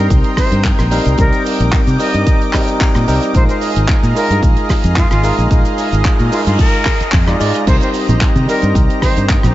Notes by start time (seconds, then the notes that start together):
Already playing: G3 C4 D#4 A#4 D#5 G5 C6
0.10 C2, kick, closed hi-hat, cabasa
0.24 closed hi-hat
0.37 C5, kick, cross-stick, open hi-hat, cabasa
0.52 G2, closed hi-hat, cabasa
0.64 kick, clap, closed hi-hat, cabasa
0.79 A#1, cross-stick, closed hi-hat, cabasa
0.91 G3 C4 D#4 A#4, open hi-hat, cabasa
1.05 C2, closed hi-hat, cabasa
1.18 C2 G3 C4 D#4 A#4 D6, kick, closed hi-hat, cabasa
1.33 closed hi-hat, cabasa
1.46 open hi-hat, cabasa
1.60 A#1, closed hi-hat, cabasa
1.73 kick, clap, closed hi-hat, cabasa
1.87 C3, closed hi-hat, cabasa
1.99 G3 C4 D#4 A#4 D#5, open hi-hat, cabasa
2.14 G2, closed hi-hat, cabasa
2.27 kick, closed hi-hat, cabasa
2.42 closed hi-hat
2.53 G3 C4 D#4 A#4, kick, cross-stick, clap, open hi-hat, cabasa
2.68 closed hi-hat, cabasa
2.81 kick, clap, closed hi-hat, cabasa
2.94 A#2, cross-stick, closed hi-hat, cabasa
3.07 C2 G3 C4 D#4 A#4, open hi-hat, cabasa
3.23 closed hi-hat, cabasa
3.34 A#1 G#3 D#4 F4 G#4 A#4 C5 F5 A#5, kick, closed hi-hat, cabasa
3.49 C5, closed hi-hat, cabasa
3.61 open hi-hat, cabasa
3.76 G#1, closed hi-hat, cabasa
3.88 kick, clap, closed hi-hat, cabasa
4.03 A#2, closed hi-hat, cabasa
4.15 G#3 D#4 F4 A#4, open hi-hat, cabasa
4.30 G2, closed hi-hat, cabasa
4.43 A#1, kick, closed hi-hat, cabasa
4.57 closed hi-hat
4.69 kick, cross-stick, open hi-hat, cabasa
4.84 F2, closed hi-hat, cabasa
4.96 F4, kick, clap, closed hi-hat, cabasa
5.11 G#1 F4, cross-stick, closed hi-hat, cabasa
5.23 G#3 D#4 F4 A#4, open hi-hat, cabasa
5.38 A#1, closed hi-hat, cabasa
5.50 A#1 G#3 D#4 F4 A#4, kick, closed hi-hat, noise sweep, cabasa
5.65 closed hi-hat, cabasa
5.78 open hi-hat, cabasa
5.92 G#1, closed hi-hat, cabasa
6.05 kick, clap, closed hi-hat, cabasa
6.19 A#2, closed hi-hat, cabasa
6.31 G#3 D#4 F4 A#4, open hi-hat, cabasa
6.46 G2 F4, closed hi-hat, cabasa
6.59 A#4, kick, closed hi-hat, cabasa
6.73 closed hi-hat
6.85 kick, cross-stick, clap, open hi-hat, cabasa
7.00 muted fingered electric bass stroke, closed hi-hat, cabasa
7.12 F2, kick, clap, open hi-hat, cabasa
7.27 G#3 D#4 F4 D5, cross-stick, closed hi-hat, cabasa
7.40 G#2 G#3 D#4 F4 D5, open hi-hat, cabasa
7.54 closed hi-hat, cabasa
7.66 C2 G3 C4 D#4 G4 A#4 C5, kick, closed hi-hat, crash, cabasa
7.81 C5, closed hi-hat, cabasa
7.94 open hi-hat, cabasa
8.09 A#1, closed hi-hat, low conga, cabasa
8.21 kick, clap, closed hi-hat, cabasa
8.36 C3, closed hi-hat, high conga, cabasa
8.47 G3 C4 D#4 A#4, open hi-hat, cabasa
8.62 G2, closed hi-hat, cabasa
8.75 C2, kick, closed hi-hat, cabasa
8.90 closed hi-hat
9.02 C5, kick, cross-stick, open hi-hat, high conga, cabasa
9.17 G2, closed hi-hat, cabasa
9.29 kick, clap, closed hi-hat, cabasa
9.43 A#1, cross-stick, closed hi-hat, low conga, cabasa